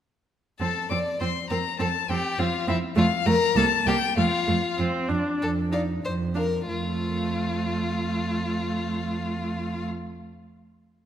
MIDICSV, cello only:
0, 0, Header, 1, 2, 480
1, 0, Start_track
1, 0, Key_signature, -1, "major"
1, 0, Tempo, 607903
1, 479, Time_signature, 2, 2, 24, 8
1, 957, Tempo, 587084
1, 2877, Tempo, 610998
1, 3837, Tempo, 632244
1, 8600, End_track
2, 0, Start_track
2, 0, Title_t, "Cello"
2, 0, Program_c, 0, 42
2, 475, Note_on_c, 0, 41, 37
2, 538, Note_off_c, 0, 41, 0
2, 713, Note_on_c, 0, 41, 34
2, 776, Note_off_c, 0, 41, 0
2, 956, Note_on_c, 0, 41, 38
2, 1021, Note_off_c, 0, 41, 0
2, 1193, Note_on_c, 0, 41, 36
2, 1259, Note_off_c, 0, 41, 0
2, 1439, Note_on_c, 0, 41, 44
2, 1504, Note_off_c, 0, 41, 0
2, 1678, Note_on_c, 0, 41, 42
2, 1743, Note_off_c, 0, 41, 0
2, 1917, Note_on_c, 0, 41, 50
2, 1982, Note_off_c, 0, 41, 0
2, 2157, Note_on_c, 0, 41, 50
2, 2222, Note_off_c, 0, 41, 0
2, 2389, Note_on_c, 0, 41, 61
2, 2455, Note_off_c, 0, 41, 0
2, 2630, Note_on_c, 0, 41, 60
2, 2695, Note_off_c, 0, 41, 0
2, 2875, Note_on_c, 0, 36, 69
2, 2938, Note_off_c, 0, 36, 0
2, 3115, Note_on_c, 0, 36, 58
2, 3178, Note_off_c, 0, 36, 0
2, 3356, Note_on_c, 0, 41, 56
2, 3419, Note_off_c, 0, 41, 0
2, 3601, Note_on_c, 0, 41, 52
2, 3664, Note_off_c, 0, 41, 0
2, 3841, Note_on_c, 0, 41, 49
2, 3902, Note_off_c, 0, 41, 0
2, 4078, Note_on_c, 0, 41, 47
2, 4138, Note_off_c, 0, 41, 0
2, 4314, Note_on_c, 0, 41, 44
2, 4707, Note_off_c, 0, 41, 0
2, 4789, Note_on_c, 0, 41, 44
2, 5194, Note_off_c, 0, 41, 0
2, 5279, Note_on_c, 0, 41, 30
2, 7691, Note_off_c, 0, 41, 0
2, 8600, End_track
0, 0, End_of_file